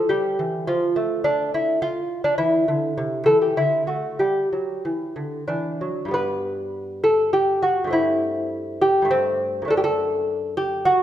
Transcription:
0.09 G3 G4
0.39 E3
0.67 F3 F4
0.96 A3
1.24 D4
1.54 E4
1.82 F4
2.24 D4
2.38 E3 E4
2.68 D3
2.97 C3
3.26 E3 A4
3.42 G4
3.57 D3 E4
3.87 A3 F#4
4.19 G3 G4
4.53 F#3
4.85 E3
5.16 D3
5.48 E3 D4
5.81 F#3
6.05 G2 G3
6.11 B3 B4
7.04 A4
7.33 G4
7.62 F#4
7.84 G2 A3
7.90 C4 E4
8.81 G4
9.02 G2 A3
9.11 C4
9.62 F#2 A3
9.68 D4 A4
9.77 G4
9.84 A4
10.57 G4
10.85 F#4

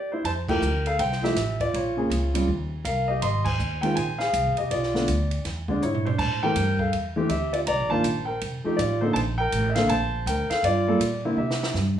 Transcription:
Already playing: G4
0.12 E4 C5
0.24 F2 C5 A5, ride
0.48 F3 A3 E4 G4 A#4 G5, kick, crash
0.62 D2, hi-hat pedal
0.86 A4 F5, ride
0.99 C2 C5 G5, ride
1.12 snare
1.22 F3 A3 E4 G4 E5, snare
1.36 A1, snare, hi-hat pedal, ride
1.60 F4 D5, kick, ride
1.74 A#1 F4 C#5, ride
1.97 C#3 A#3 C4 G#4
2.10 C#2, hi-hat pedal, ride
2.34 C#3 G3 C4 F4, ride
2.48 D#2
2.85 C2 A#4 F5, hi-hat pedal, ride
3.08 G4 D#5
3.22 G#1 D#5 C6, ride
3.44 C5 G#5, kick, crash
3.59 D#2, hi-hat pedal
3.81 D#3 G#3 C4 F4 A#4 G5, ride
3.95 A#1 C5 G#5, ride
4.18 G#4 F5, snare
4.33 C2, hi-hat pedal, ride
4.46 G#1
4.57 G4 D#5, ride
4.71 B1 F4 D5, ride
4.83 snare
4.94 D3 A3 B3 F4, snare
5.08 D2, hi-hat pedal, ride
5.31 ride
5.45 E2, snare, ride
5.68 D3 G#3 C4 D4, kick
5.82 G#2 E4 C#5, hi-hat pedal
5.95 floor tom
6.05 D4 C5, floor tom
6.18 A2 C5 A5, kick, crash
6.43 E3 A3 C4 G4 A#4 G5
6.56 G2, hi-hat pedal, ride
6.79 A4 F5, kick
6.93 E2, ride
7.16 E3 A3 C4 G4
7.29 D2 G4 E5, hi-hat pedal, ride
7.53 F4 D5, ride
7.67 C2 D5 A#5, ride
7.80 A#1
7.90 G1 D#3 A#3 D4 F4 C5 A5
8.04 A#1, hi-hat pedal, ride
8.25 A#4 G5
8.41 F1, ride
8.64 F3 A3 D#4 G4, muted upright bass stroke
8.77 A1 F4 D5, hi-hat pedal, ride
9.01 D3 A#3 C4 D#4 A4 C5
9.13 A#1 C5 A5, ride
9.38 A#4 G5
9.52 A1, hi-hat pedal, ride
9.69 E5
9.75 D3 A#3 C4 A4 F5, snare, ride
9.89 A#1 C5 A5, ride
10.26 D2 A#4 G5, hi-hat pedal, ride
10.50 A4 F5, muted upright bass stroke, snare, ride
10.63 G2 F4 D5, ride
10.88 G3 A#3 F4 A4
11.00 A#2, hi-hat pedal, ride
11.25 D3 A#3 C4 E4
11.37 C3 G4 E5
11.51 snare
11.63 snare
11.74 G2, snare, hi-hat pedal

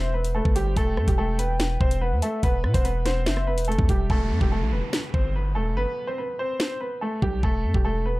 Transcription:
Already playing: E1 C4 C5 E5
0.14 B3 B4
0.25 closed hi-hat
0.35 A3 A4 B4
0.45 G1, kick
0.55 G3 G4 C5, closed hi-hat
0.77 E1 A3 A4 G5, kick, closed hi-hat
0.97 G2, cross-stick
1.08 E1 G3 G4, kick, closed hi-hat
1.18 A3 A4
1.39 B3 B4, closed hi-hat
1.60 snare, closed hi-hat
1.81 E1 C4 C5, kick
1.91 closed hi-hat
2.01 B3 B4 F#5
2.12 E2
2.22 A3 A4 E5, closed hi-hat
2.43 E1 B3 B4 F#5, kick, closed hi-hat
2.64 B2, cross-stick
2.74 E1 C4 C5, kick, closed hi-hat
2.84 B3 B4, closed hi-hat
3.06 C4 C5, snare, closed hi-hat
3.26 F#1 E5, snare
3.37 cross-stick
3.47 B3 B4
3.52 E1
3.58 closed hi-hat
3.65 A3 A4, closed hi-hat
3.72 closed hi-hat
3.79 E2, kick
3.89 E1 G3 G4, kick, closed hi-hat
4.10 E1 A3 A4, kick, downlifter
4.31 G2
4.41 E1 G3 G4, kick
4.52 A3 A4
4.62 B1
4.72 E1 B3 B4
4.93 snare
5.14 G1 C4 C5, kick
5.36 B3 B4
5.55 D#1 A3 A4
5.71 G1
5.77 B3 B4
6.07 C4 C5
6.18 B3 B4
6.39 C4 C5
6.60 snare
6.81 B3 B4
7.01 A3 A4
7.22 B1 G3 G4, kick
7.43 E1 A3 A4, kick
7.64 G2
7.74 E1 G3 G4, kick
7.85 A3 A4
8.06 B3 B4

